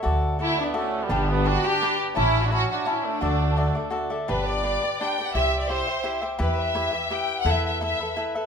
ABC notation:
X:1
M:3/4
L:1/16
Q:1/4=170
K:D
V:1 name="Cavaquinho"
[FAde]4 [FAde]2 [Ade]2 [FAde]4 | [DGBg]4 [DGBg]2 [GBg]2 [DGBg]4 | [ceab]4 [ceab]4 [ceab]4 | [FAde]4 [FAde]2 [Ade]2 [FAde]2 [Ade]2 |
[K:G] [DGBd]4 [DGBd]2 [GBd]2 [DGBd]2 [GBd]2 | [EGce]4 [EGce]2 [Gce]2 [EGce]2 [Gce]2 | [EGBe]4 [EGBe]2 [GBe]2 [EGBe]4 | [EABe]4 [EABe]2 [ABe]2 [EABe]2 [ABe]2 |]
V:2 name="Violin section"
z4 E2 D2 C3 B,- | B,2 D2 F2 G4 z2 | E3 F F2 F2 E2 D2- | D8 z4 |
[K:G] B2 d6 g3 f | e3 d c6 z2 | B2 e6 g3 f | e2 e2 e4 z4 |]
V:3 name="Trumpet"
z4 A,2 B,2 A,3 G,- | G,2 B,2 D2 D4 z2 | C3 D C2 D2 C2 A,2- | A,8 z4 |
[K:G] z12 | z12 | z12 | z12 |]
V:4 name="Upright bass" clef=bass
D,,8 z4 | G,,,8 z4 | A,,,8 z4 | D,,8 z4 |
[K:G] G,,,8 z4 | C,,8 z4 | E,,8 z4 | E,,8 z4 |]